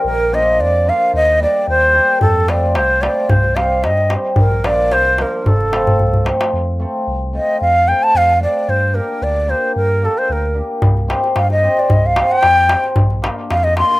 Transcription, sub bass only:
X:1
M:2/4
L:1/8
Q:"Swing 16ths" 1/4=112
K:Fmix
V:1 name="Sub bass" clef=bass
B,,,2 F,,2 | E,,2 E,,2 | F,,2 C,,2 | C,,2 G,,2 |
B,,,2 C,,2 | F,,,2 C,,2 | F,,2 C,,2 | F,,2 F,,2 |
G,,2 D,,2 | G,,2 D,,2 | C,,2 G,,2 | C,,2 F,,2 |
B,,,2 F,,2 |]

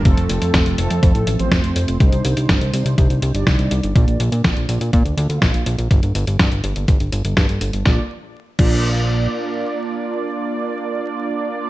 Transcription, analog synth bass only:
X:1
M:4/4
L:1/16
Q:1/4=123
K:Bb
V:1 name="Analog synth bass" clef=bass
F,,, F,,, F,,, F,, F,,, F,,, F,,, F,, F,, A,,, A,,, A,,, F,,, F,,, F,,, F,,, | C,, C,, C,, C,, G,,, C,, C,, C,, C,, C,, C,, G,,, C,, C,, C,, G,,, | B,,, B,,, B,,, B,, B,,, B,,, B,,, B,, B,, D,, D,, D,, B,,, B,,, B,,, B,,, | G,,, G,,, G,,, G,,, G,, G,,, G,,, G,,, G,,, G,,, G,,, G,,, G,, G,, G,,, G,,, |
B,,, z4 z B,,,6 z4 | z16 |]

